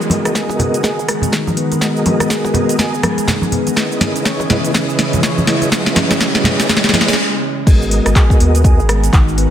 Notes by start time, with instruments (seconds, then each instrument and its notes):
Already playing: ambient pad D#3 G#3 B3 F#4 A#4, tonewheel organ B3 F#4 G#4 A#4 D#5, riser
0.01 shaker
0.10 handpan G#3, open hi-hat, muted conga, high conga
0.25 cross-stick, closed hi-hat, shaker
0.35 handpan G#4, kick, snare, closed hi-hat, shaker
0.49 kick, muted conga, shaker
0.59 sub bass D#2, handpan B3, open hi-hat, low conga
0.74 closed hi-hat, shaker
0.83 tonewheel organ B3 F#4 G#4 A#4 D#5, handpan G#4, kick, snare, closed hi-hat, muted conga, shaker
0.98 sub bass G#1, shaker
1.08 handpan G#3, cross-stick, open hi-hat
1.22 closed hi-hat, muted conga, low conga, shaker
1.32 handpan D#3, kick, snare, closed hi-hat, shaker
1.47 high conga, shaker
1.57 handpan B3, open hi-hat
1.72 closed hi-hat, muted conga, shaker
1.81 handpan G#3, tonewheel organ B3 F#4 G#4 A#4 D#5, ambient pad G#4, kick, snare, closed hi-hat, shaker
1.96 shaker
2.05 handpan G#3, open hi-hat, muted conga, high conga
2.20 cross-stick, closed hi-hat, high conga, shaker
2.30 handpan G#4, kick, snare, closed hi-hat, shaker
2.44 kick, muted conga, shaker
2.54 handpan B3, open hi-hat, low conga
2.69 closed hi-hat, shaker
2.78 tonewheel organ B3 F#4 G#4 A#4 D#5, handpan G#4, kick, snare, closed hi-hat, muted conga, high conga, shaker
2.94 shaker
3.03 handpan G#3, cross-stick, open hi-hat, high conga
3.18 closed hi-hat, muted conga, shaker
3.27 handpan D#3, kick, snare, closed hi-hat, low conga, shaker
3.42 high conga, shaker
3.52 handpan B3, open hi-hat, low conga
3.67 closed hi-hat, muted conga, shaker
3.76 ambient pad C#3 E3 G#3 E4, tonewheel organ C#4 E4 G#4 B4 D#5, handpan C#4, kick, snare, closed hi-hat, shaker
3.92 shaker
4.01 handpan C#4, snare, open hi-hat, muted conga, high conga
4.16 closed hi-hat, shaker
4.25 handpan C#5, kick, snare, closed hi-hat, shaker
4.39 kick, muted conga, shaker
4.50 handpan E4, snare, open hi-hat, low conga
4.64 closed hi-hat, shaker
4.74 handpan C#4, kick, snare, closed hi-hat, muted conga, shaker
4.89 shaker
4.99 handpan C#4, snare, open hi-hat
5.13 closed hi-hat, muted conga, low conga, shaker
5.23 handpan C#5, kick, snare, closed hi-hat, shaker
5.38 high conga, shaker
5.47 handpan E4, snare, open hi-hat
5.61 closed hi-hat, muted conga, shaker
5.72 handpan C#4, kick, snare, closed hi-hat, shaker
5.86 snare, shaker
5.96 handpan C#4, snare, open hi-hat, muted conga, high conga
6.10 snare, closed hi-hat, high conga, shaker
6.20 handpan C#4, tonewheel organ C#4 E4 G#4 B4 D#5, kick, snare, closed hi-hat, shaker
6.34 kick, snare, muted conga, shaker
6.44 handpan C#4, snare, open hi-hat, low conga
6.60 snare, closed hi-hat, shaker
6.69 tonewheel organ C#4 E4 G#4 B4 D#5, handpan C#4, kick, snare, closed hi-hat, muted conga, high conga, shaker
6.77 snare
6.84 snare, shaker
6.89 snare
6.93 handpan C#4, tonewheel organ C#4 E4 G#4 B4 D#5, snare, open hi-hat, high conga
7.01 snare
7.08 snare, closed hi-hat, muted conga, shaker
7.13 snare
7.66 sub bass G#1, ambient pad D#3 G#3 B3 F#4 A#4, handpan G#3, tonewheel organ B3 F#4 G#4 A#4 D#5, kick, closed hi-hat, crash, shaker
7.82 shaker
7.91 handpan G#3, open hi-hat
8.06 sub bass G#1, cross-stick, closed hi-hat, shaker
8.16 handpan G#4, kick, clap, closed hi-hat, shaker
8.30 kick, shaker
8.40 sub bass D#2, handpan B3, open hi-hat
8.55 closed hi-hat, shaker
8.64 tonewheel organ B3 F#4 G#4 A#4 D#5, handpan G#4, kick, closed hi-hat, shaker
8.79 sub bass G#1, shaker
8.89 handpan G#3, cross-stick, open hi-hat
9.03 closed hi-hat, shaker
9.13 sub bass G#1, handpan D#3, kick, clap, closed hi-hat, shaker
9.28 shaker
9.38 handpan B3, open hi-hat